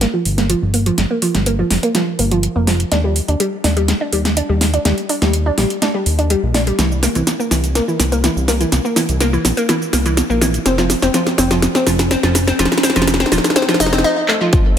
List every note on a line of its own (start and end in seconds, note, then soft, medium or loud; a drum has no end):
0.01 0.06 A#3 medium
0.01 snare soft
0.01 closed hi-hat medium
0.14 0.21 F3 medium
0.25 0.55 G1 medium
0.25 open hi-hat loud
0.38 0.43 A#3 medium
0.38 snare soft
0.38 closed hi-hat medium
0.50 0.58 F3 medium
0.50 closed hi-hat medium
0.62 0.91 G1 medium
0.74 0.79 A#3 medium
0.74 open hi-hat medium
0.86 0.94 F3 medium
0.86 closed hi-hat medium
0.98 1.06 G1 medium
0.98 snare medium
0.98 closed hi-hat medium
1.11 1.15 A#3 medium
1.22 1.31 F3 medium
1.22 open hi-hat loud
1.35 1.64 G1 loud
1.35 snare soft
1.35 closed hi-hat medium
1.46 1.51 A#3 medium
1.46 closed hi-hat medium
1.59 1.67 F3 medium
1.71 1.79 F1 loud
1.71 snare medium
1.71 open hi-hat medium
1.83 1.88 A#3 medium
1.83 closed hi-hat medium
1.95 2.03 F3 medium
1.95 snare medium
1.95 closed hi-hat medium
2.19 2.48 G1 loud
2.19 2.24 A#3 medium
2.19 open hi-hat loud
2.31 2.39 F3 medium
2.31 closed hi-hat medium
2.43 closed hi-hat medium
2.56 2.85 F1 loud
2.56 2.60 A#3 medium
2.67 2.76 F3 medium
2.67 snare medium
2.67 open hi-hat medium
2.80 closed hi-hat medium
2.92 3.21 D#2 loud
2.92 2.97 D4 medium
2.92 snare medium
2.92 closed hi-hat medium
3.04 3.12 G3 medium
3.16 open hi-hat loud
3.28 3.36 D#2 loud
3.28 3.33 D4 medium
3.28 closed hi-hat soft
3.40 3.48 G3 medium
3.40 closed hi-hat medium
3.64 3.94 D#2 loud
3.64 3.69 D4 medium
3.64 snare medium
3.64 open hi-hat loud
3.77 3.84 G3 medium
3.77 closed hi-hat soft
3.88 snare medium
3.88 closed hi-hat medium
4.01 4.06 D4 medium
4.12 4.42 D#2 medium
4.12 4.21 G3 medium
4.12 open hi-hat loud
4.25 snare medium
4.25 closed hi-hat medium
4.37 4.42 D4 medium
4.37 closed hi-hat medium
4.49 4.78 D#2 medium
4.49 4.57 G3 medium
4.61 snare medium
4.61 open hi-hat loud
4.74 4.78 D4 medium
4.74 closed hi-hat medium
4.85 4.93 D#2 loud
4.85 4.94 G3 medium
4.85 snare medium
4.85 closed hi-hat medium
4.98 closed hi-hat soft
5.09 5.14 D4 medium
5.09 open hi-hat loud
5.22 5.51 D#2 loud
5.22 5.30 G3 medium
5.22 snare medium
5.22 closed hi-hat soft
5.33 closed hi-hat medium
5.46 5.51 D4 medium
5.58 5.66 A#1 loud
5.58 5.66 G3 medium
5.58 snare medium
5.58 open hi-hat medium
5.70 closed hi-hat soft
5.82 5.87 D4 medium
5.82 snare medium
5.82 closed hi-hat medium
5.94 6.02 G3 medium
6.06 6.35 D#2 loud
6.06 open hi-hat loud
6.19 6.23 D4 medium
6.19 closed hi-hat soft
6.30 6.39 G3 medium
6.30 closed hi-hat medium
6.43 6.72 A#1 loud
6.54 6.60 D4 medium
6.54 snare medium
6.54 open hi-hat medium
6.67 6.75 G3 medium
6.67 closed hi-hat soft
6.79 7.08 C2 loud
6.79 6.87 E3 medium
6.79 snare medium
6.79 closed hi-hat medium
6.79 cabasa soft
6.92 cabasa soft
7.03 7.08 A#3 medium
7.03 snare medium
7.03 open hi-hat loud
7.03 cabasa medium
7.15 7.23 C2 loud
7.15 7.23 E3 medium
7.15 closed hi-hat medium
7.15 cabasa soft
7.27 snare medium
7.27 closed hi-hat medium
7.27 cabasa soft
7.40 7.44 A#3 medium
7.40 cabasa soft
7.51 7.81 C2 loud
7.51 7.60 E3 medium
7.51 snare medium
7.51 open hi-hat medium
7.51 cabasa medium
7.64 closed hi-hat soft
7.64 cabasa soft
7.75 7.80 A#3 medium
7.75 snare medium
7.75 closed hi-hat medium
7.75 cabasa soft
7.88 7.96 E3 medium
7.88 cabasa soft
8.00 8.29 C2 medium
8.00 snare medium
8.00 open hi-hat loud
8.00 cabasa medium
8.12 8.17 A#3 medium
8.12 closed hi-hat medium
8.12 cabasa soft
8.24 8.32 E3 medium
8.24 snare medium
8.24 closed hi-hat medium
8.24 cabasa soft
8.36 8.65 C2 medium
8.36 cabasa soft
8.48 8.53 A#3 medium
8.48 snare medium
8.48 open hi-hat medium
8.48 cabasa medium
8.61 8.68 E3 medium
8.61 closed hi-hat medium
8.61 cabasa soft
8.72 8.80 C2 medium
8.72 snare medium
8.72 closed hi-hat medium
8.72 cabasa soft
8.85 8.89 A#3 medium
8.85 cabasa soft
8.96 9.05 E3 medium
8.96 snare medium
8.96 open hi-hat loud
8.96 cabasa medium
9.09 9.38 C2 loud
9.09 closed hi-hat medium
9.09 cabasa soft
9.21 9.26 A#3 medium
9.21 snare medium
9.21 closed hi-hat medium
9.21 cabasa soft
9.33 9.41 E3 medium
9.33 cabasa soft
9.45 9.53 A#1 loud
9.45 snare medium
9.45 open hi-hat medium
9.45 cabasa medium
9.57 9.62 A#3 medium
9.57 closed hi-hat medium
9.57 cabasa soft
9.69 9.77 E3 medium
9.69 snare medium
9.69 closed hi-hat medium
9.69 cabasa soft
9.82 cabasa soft
9.93 10.22 C2 loud
9.93 9.98 A#3 medium
9.93 snare medium
9.93 open hi-hat loud
9.93 cabasa medium
10.06 10.13 E3 medium
10.06 closed hi-hat medium
10.06 cabasa soft
10.17 snare medium
10.17 closed hi-hat medium
10.17 cabasa soft
10.30 10.59 A#1 loud
10.30 10.35 A#3 medium
10.30 cabasa soft
10.41 10.50 E3 medium
10.41 snare medium
10.41 open hi-hat medium
10.41 cabasa medium
10.54 closed hi-hat medium
10.54 cabasa soft
10.66 10.95 F1 loud
10.66 10.71 C4 medium
10.66 snare medium
10.66 closed hi-hat medium
10.66 cabasa soft
10.78 10.86 F3 medium
10.78 snare medium
10.78 cabasa soft
10.90 snare medium
10.90 open hi-hat loud
10.90 cabasa medium
11.02 11.10 F1 loud
11.02 11.07 C4 medium
11.02 snare medium
11.02 closed hi-hat medium
11.02 cabasa soft
11.14 11.22 F3 medium
11.14 snare medium
11.14 closed hi-hat medium
11.14 cabasa soft
11.27 snare medium
11.27 cabasa soft
11.38 11.68 F1 loud
11.38 11.43 C4 medium
11.38 snare medium
11.38 open hi-hat medium
11.38 cabasa medium
11.51 11.59 F3 medium
11.51 snare medium
11.51 closed hi-hat medium
11.51 cabasa soft
11.62 snare loud
11.62 closed hi-hat medium
11.62 cabasa soft
11.75 11.80 C4 medium
11.75 snare medium
11.75 cabasa soft
11.87 12.16 F1 medium
11.87 11.95 F3 medium
11.87 snare loud
11.87 open hi-hat loud
11.87 cabasa medium
11.99 snare medium
11.99 closed hi-hat medium
11.99 cabasa soft
12.11 12.16 C4 medium
12.11 snare loud
12.11 closed hi-hat medium
12.11 cabasa soft
12.23 12.52 F1 medium
12.23 12.31 F3 medium
12.23 snare medium
12.23 cabasa soft
12.35 snare loud
12.35 open hi-hat medium
12.35 cabasa medium
12.48 12.52 C4 medium
12.48 snare medium
12.48 closed hi-hat medium
12.48 cabasa soft
12.59 12.67 F1 loud
12.59 12.68 F3 medium
12.59 snare loud
12.59 closed hi-hat medium
12.59 cabasa soft
12.65 snare medium
12.72 snare medium
12.72 cabasa soft
12.78 snare medium
12.83 12.88 C4 medium
12.83 snare loud
12.83 open hi-hat loud
12.83 cabasa medium
12.90 snare medium
12.96 13.25 F1 loud
12.96 13.04 F3 medium
12.96 snare medium
12.96 closed hi-hat medium
12.96 cabasa soft
13.02 snare loud
13.08 snare loud
13.08 closed hi-hat medium
13.08 cabasa soft
13.14 snare medium
13.20 13.25 C4 medium
13.20 snare medium
13.20 closed hi-hat soft
13.20 cabasa soft
13.26 snare medium
13.32 13.40 D#1 loud
13.32 13.40 F3 medium
13.32 snare loud
13.32 open hi-hat medium
13.32 cabasa medium
13.38 snare medium
13.44 snare loud
13.44 closed hi-hat medium
13.44 cabasa soft
13.50 snare medium
13.56 13.61 C4 medium
13.56 snare loud
13.56 closed hi-hat medium
13.56 cabasa soft
13.62 snare loud
13.69 13.76 F3 medium
13.69 snare loud
13.69 cabasa soft
13.74 snare loud
13.80 14.04 F1 loud
13.80 13.92 D#4 loud
13.80 snare loud
13.80 open hi-hat loud
13.80 cabasa medium
13.86 snare loud
13.93 14.01 C4 medium
13.93 snare loud
13.93 closed hi-hat medium
13.93 cabasa soft
13.98 snare loud
14.04 14.16 D#4 loud
14.28 14.34 A3 medium
14.28 clap medium
14.41 14.52 F3 medium
14.53 14.78 G1 loud
14.53 14.61 F3 medium
14.53 kick loud
14.53 closed hi-hat medium
14.53 cabasa soft